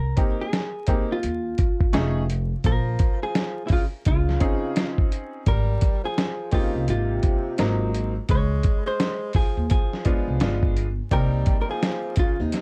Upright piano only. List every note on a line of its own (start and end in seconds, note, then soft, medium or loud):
0.17 0.44 A#3 medium
0.17 0.44 C4 medium
0.17 0.45 D#4 medium
0.17 0.45 G4 medium
0.87 1.15 A#3 medium
0.87 1.15 C4 medium
0.87 1.15 D#4 medium
0.87 1.15 G4 medium
1.93 2.21 A3 medium
1.93 2.21 C#4 medium
1.93 2.21 D#4 medium
1.93 2.21 G#4 medium
4.40 5.41 C4 medium
4.40 5.41 C#4 medium
4.40 5.41 D#4 medium
4.40 5.42 G#4 medium
6.52 7.53 A#3 medium
6.52 7.53 C4 medium
6.52 7.53 D#4 medium
6.52 7.53 G4 medium
7.58 8.12 F#3 medium
7.58 8.11 A#3 medium
7.58 8.11 C4 medium
7.58 8.12 D#4 medium
10.05 10.39 G#3 medium
10.05 10.39 B3 medium
10.05 10.40 D4 medium
10.05 10.40 F4 medium
10.40 10.85 G#3 medium
10.40 10.85 B3 medium
10.40 10.85 D4 medium
10.40 10.85 F4 medium
11.11 12.12 A#3 medium
11.11 12.12 C4 medium
11.11 12.12 D#4 medium
11.11 12.12 G5 medium